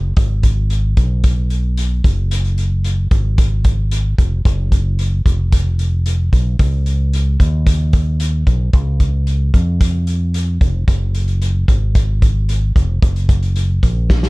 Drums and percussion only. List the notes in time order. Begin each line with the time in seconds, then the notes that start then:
0.17 kick, closed hi-hat
0.43 kick, closed hi-hat
0.70 closed hi-hat
0.97 kick, closed hi-hat
1.24 kick, closed hi-hat
1.50 closed hi-hat
1.77 closed hi-hat
2.04 kick, closed hi-hat
2.31 closed hi-hat
2.45 closed hi-hat
2.58 closed hi-hat
2.84 closed hi-hat
3.11 kick, closed hi-hat
3.38 kick, closed hi-hat
3.64 kick, closed hi-hat
3.91 closed hi-hat
4.18 kick, closed hi-hat
4.45 kick, closed hi-hat
4.72 kick, closed hi-hat
4.99 closed hi-hat
5.26 kick, closed hi-hat
5.52 kick, closed hi-hat
5.79 closed hi-hat
6.06 closed hi-hat
6.33 kick, closed hi-hat
6.59 kick, closed hi-hat
6.86 closed hi-hat
7.13 closed hi-hat
7.40 kick, closed hi-hat
7.67 kick, closed hi-hat
7.93 kick, closed hi-hat
8.20 closed hi-hat
8.47 kick, closed hi-hat
8.73 kick, closed hi-hat
9.00 kick, closed hi-hat
9.27 closed hi-hat
9.54 kick, closed hi-hat
9.81 kick, closed hi-hat
10.07 closed hi-hat
10.34 closed hi-hat
10.61 kick, closed hi-hat
10.88 kick, closed hi-hat
11.15 closed hi-hat
11.28 closed hi-hat
11.42 closed hi-hat
11.68 kick, closed hi-hat
11.95 kick, closed hi-hat
12.22 kick, closed hi-hat
12.49 closed hi-hat
12.76 kick, closed hi-hat
13.02 kick, closed hi-hat
13.16 closed hi-hat
13.29 kick, closed hi-hat
13.43 closed hi-hat
13.56 closed hi-hat
13.83 kick, closed hi-hat
14.10 kick, snare
14.23 snare